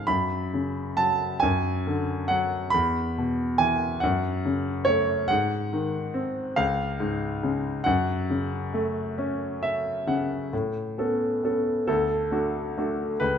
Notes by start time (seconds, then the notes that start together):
0.07 F#2 B5
0.54 C#3
0.97 F#3 A5
1.40 F#2 G#5
1.87 D3
2.28 F#3 F#5
2.70 E2 B5
3.18 B2
3.58 E3 G#5
4.00 F#2 F#5
4.45 C#3
4.85 A3 C#5
5.28 G#2 F#5
5.73 D#3
6.14 C4
6.56 C#2 F5
7.00 G#2
7.43 C#3
7.84 F#2 F#5
8.30 C#3
8.74 A3
9.18 C#4
9.63 E5
10.07 C#3 F#5
10.53 A2
10.98 B3 C#4 A4
11.43 B3 C#4 A4
11.87 D2 A4
12.31 A3 D4 F#4
12.78 A3 D4 F#4
13.20 C#2 B4